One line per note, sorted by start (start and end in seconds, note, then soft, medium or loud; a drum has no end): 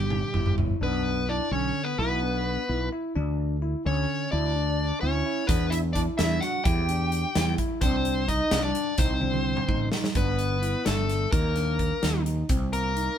0.00 0.22 G1 medium
0.00 0.27 D4 medium
0.00 0.54 G4 medium
0.10 mid tom medium
0.34 0.73 G1 medium
0.34 0.54 E4 medium
0.34 mid tom medium
0.46 mid tom medium
0.58 0.78 E4 medium
0.58 floor tom medium
0.81 1.40 B1 medium
0.81 1.26 B3 medium
0.81 1.21 D4 medium
0.81 1.30 B4 medium
1.29 1.50 D4 medium
1.29 1.49 E4 medium
1.29 1.52 D5 medium
1.51 1.71 B1 medium
1.51 1.92 D3 medium
1.51 1.81 C#4 medium
1.51 1.84 C#5 medium
1.84 1.98 B3 medium
1.84 1.98 B4 medium
1.99 2.57 B1 medium
1.99 2.88 B3 medium
1.99 2.19 E4 medium
1.99 2.88 B4 medium
2.22 2.62 D4 medium
2.69 2.88 B1 medium
2.69 2.89 E4 medium
2.93 3.12 E4 medium
3.16 3.74 D2 medium
3.16 3.56 D4 medium
3.62 3.82 E4 medium
3.85 4.05 D2 medium
3.85 4.26 D3 medium
3.85 4.29 C#4 medium
3.85 4.31 C#5 medium
4.32 4.91 D2 medium
4.32 4.98 D4 medium
4.32 4.52 E4 medium
4.32 5.00 D5 medium
4.55 4.96 D4 medium
5.01 5.22 D2 medium
5.01 5.45 C#4 medium
5.01 5.22 E4 medium
5.01 5.50 C#5 medium
5.26 5.46 E4 medium
5.47 6.07 E2 medium
5.47 5.70 B3 medium
5.47 5.89 D4 medium
5.47 5.72 B4 medium
5.47 kick loud
5.47 closed hi-hat medium
5.70 5.81 E4 medium
5.70 5.77 E5 medium
5.70 closed hi-hat medium
5.93 6.05 D4 medium
5.93 6.16 E4 medium
5.93 6.00 D5 medium
5.93 kick medium
5.93 closed hi-hat medium
6.18 6.38 E2 medium
6.18 6.59 D4 medium
6.18 6.40 E4 medium
6.18 6.42 E5 medium
6.18 snare loud
6.18 closed hi-hat medium
6.41 6.64 F#4 medium
6.41 6.63 F#5 medium
6.41 snare soft
6.41 closed hi-hat medium
6.65 7.24 E2 medium
6.65 6.86 E4 medium
6.65 7.55 G4 medium
6.65 7.54 G5 medium
6.65 kick loud
6.65 closed hi-hat medium
6.89 7.29 D4 medium
6.89 closed hi-hat medium
7.12 closed hi-hat medium
7.35 7.55 E2 medium
7.35 7.56 E4 medium
7.35 snare loud
7.35 closed hi-hat medium
7.58 7.79 E4 medium
7.58 kick medium
7.58 closed hi-hat medium
7.81 8.40 C2 loud
7.81 8.25 C4 medium
7.81 8.23 D4 medium
7.81 8.30 C5 medium
7.81 kick loud
7.81 closed hi-hat medium
8.05 closed hi-hat medium
8.28 8.61 D#4 loud
8.28 8.49 D#4 medium
8.28 8.61 D#5 loud
8.28 kick medium
8.28 closed hi-hat medium
8.51 8.71 C2 medium
8.51 8.92 D4 medium
8.51 snare loud
8.51 closed hi-hat medium
8.63 8.96 D4 medium
8.63 9.00 D5 medium
8.75 closed hi-hat medium
8.98 9.57 C2 medium
8.98 9.88 C4 medium
8.98 9.19 D#4 medium
8.98 9.88 C5 medium
8.98 kick loud
8.98 closed hi-hat medium
9.21 9.62 D4 medium
9.21 high tom medium
9.33 high tom medium
9.57 mid tom medium
9.68 9.88 A1 medium
9.68 9.89 D#4 medium
9.68 kick medium
9.92 10.12 D#4 medium
9.92 snare medium
10.04 snare medium
10.15 10.74 G1 medium
10.15 10.83 B3 medium
10.15 10.56 D4 medium
10.15 10.86 B4 medium
10.15 kick medium
10.15 closed hi-hat medium
10.39 closed hi-hat medium
10.62 10.82 E4 medium
10.62 closed hi-hat medium
10.85 11.25 G1 medium
10.85 11.30 A3 medium
10.85 11.26 D4 medium
10.85 11.32 A4 medium
10.85 snare medium
10.85 closed hi-hat medium
11.09 snare soft
11.09 closed hi-hat medium
11.32 11.91 D#2 medium
11.32 12.23 A#3 medium
11.32 11.53 D#4 medium
11.32 12.22 A#4 medium
11.32 kick loud
11.32 closed hi-hat medium
11.55 11.96 D4 medium
11.55 snare soft
11.55 closed hi-hat medium
11.79 kick medium
11.79 closed hi-hat medium
12.02 12.42 D#2 medium
12.02 12.23 D#4 medium
12.02 snare medium
12.02 closed hi-hat medium
12.26 12.46 D#4 medium
12.26 closed hi-hat medium
12.49 13.08 C2 loud
12.49 12.90 C4 medium
12.49 kick medium
12.49 closed hi-hat medium
12.73 13.17 A#3 medium
12.73 13.18 A#4 medium
12.73 closed hi-hat medium
12.97 13.17 D#4 medium
12.97 closed hi-hat medium